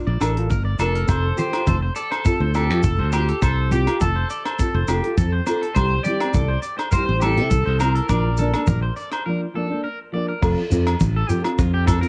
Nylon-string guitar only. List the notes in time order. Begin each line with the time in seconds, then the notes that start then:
Already playing: F4
0.20 D4 A#4, muted nylon-string guitar stroke
0.36 F4 A#4
0.78 D4 F4 A#4
1.07 C4 A4, muted nylon-string guitar stroke
1.36 C4 F4 A4
1.52 F4 A4
2.25 C4 F4 A4
2.55 C4 F4 A4
2.69 F4 A4
3.12 C4 F4, muted nylon-string guitar stroke
3.71 C4 F4, muted nylon-string guitar stroke
3.86 F4 A4
4.59 C4 F4 A4
4.88 C4 F4 A4
5.04 F4 A4
5.46 C4 F4 A4
5.76 G3 C4, muted nylon-string guitar stroke
6.05 G3 C4 E4
6.20 C4 E4
6.93 G3 C4 E4
7.22 G3 C4 E4
7.37 C4 E4
7.80 C4 E4, muted nylon-string guitar stroke
8.09 F3 A#3 D4
8.40 A#3 D4
8.54 A#3 D4
9.26 F3 A#3 D4
9.54 F3 A#3 D4
9.69 A#3 D4
10.12 F3 A#3 D4
10.41 F3 C4 F4 A4
10.69 F3 C4 F4 A4
11.28 F3 C4 F4 A4
11.42 C4 F4 A4
11.85 F3 C4 F4 A4
12.00 C4 F4 A4